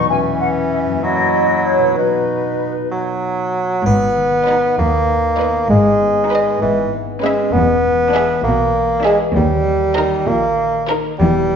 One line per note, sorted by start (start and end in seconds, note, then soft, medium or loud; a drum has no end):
0.00 0.97 E2 medium
0.00 0.99 G#3 soft
0.00 0.10 D#4 medium
0.00 0.94 E4 soft
0.00 0.11 B4 soft
0.06 1.05 E3 medium
0.06 0.98 C#5 soft
0.06 0.17 G#5 medium
0.12 1.05 C#4 medium
0.41 0.48 F#5 medium
0.70 0.78 E5 medium
0.86 1.91 F#2 soft
0.91 1.93 A#3 soft
0.95 1.95 E4 soft
1.00 1.98 E4 medium
1.00 1.97 C#5 soft
1.00 1.64 D#5 medium
1.04 1.97 F#3 medium
1.64 1.95 C#5 medium
1.78 3.79 B2 soft
1.83 5.39 B3 soft
1.87 4.47 D#4 soft
1.92 4.77 B4 soft
1.92 2.87 B4 soft
1.97 2.75 B2 soft
1.97 3.54 D#4 soft
2.92 3.82 F#3 medium
3.85 4.60 G#1 medium
3.85 4.60 G#2 medium
3.85 5.69 G#2 medium
3.85 4.77 B3 medium
3.85 triangle soft
4.16 5.72 D#3 soft
4.47 4.71 D#4 soft
4.47 5.08 D#4 soft
4.47 4.71 B4 medium
4.47 4.70 D#5 soft
4.78 5.52 D#2 medium
4.78 5.68 A#3 medium
4.78 6.31 B4 soft
5.10 6.31 D#4 soft
5.39 6.00 B3 soft
5.39 5.62 D#4 soft
5.39 5.63 B4 soft
5.39 5.62 D#5 soft
5.70 6.44 G#1 medium
5.70 6.61 G#2 soft
5.70 6.44 G#2 medium
5.70 6.60 G#3 medium
6.01 6.92 B3 soft
6.31 6.54 D#4 soft
6.31 6.64 D#4 soft
6.31 6.54 B4 soft
6.31 7.22 B4 soft
6.31 6.55 D#5 soft
6.61 7.35 G#1 medium
6.61 7.56 G#2 medium
6.61 7.36 G#2 medium
6.61 6.92 E3 medium
6.93 9.39 B3 soft
7.22 7.54 G#3 medium
7.22 7.56 C#4 soft
7.22 7.46 C#4 medium
7.22 7.45 B4 soft
7.22 8.13 B4 soft
7.22 7.46 E5 soft
7.52 8.26 E1 medium
7.52 8.27 E2 medium
7.52 9.39 E3 medium
7.52 8.43 B3 medium
7.84 9.38 G#3 soft
8.14 8.37 D4 medium
8.14 8.37 G#4 medium
8.14 8.37 E5 medium
8.44 9.18 B1 medium
8.44 9.18 B2 medium
8.44 9.04 A#3 medium
8.44 9.38 G#4 soft
8.75 9.38 D5 soft
9.05 9.19 G#3 medium
9.05 9.28 D4 medium
9.05 9.28 G#4 medium
9.05 9.38 B4 soft
9.05 9.28 E5 soft
9.35 10.09 D#2 medium
9.35 10.10 D#2 medium
9.35 11.21 D#3 medium
9.35 10.28 G3 medium
9.66 11.21 A#3 soft
9.96 10.19 D#4 medium
9.96 10.19 A#4 medium
9.96 10.57 D#5 soft
10.27 11.02 A#1 medium
10.27 11.01 A#2 medium
10.27 10.88 A#3 medium
10.27 11.22 A#4 medium
10.58 11.22 D#5 soft
10.87 11.11 D#4 medium
10.87 11.22 D#4 soft
10.87 11.11 A#4 medium
11.19 11.56 E1 medium
11.19 11.56 E2 medium
11.19 11.56 E3 medium
11.19 11.56 G3 medium
11.50 11.56 E4 soft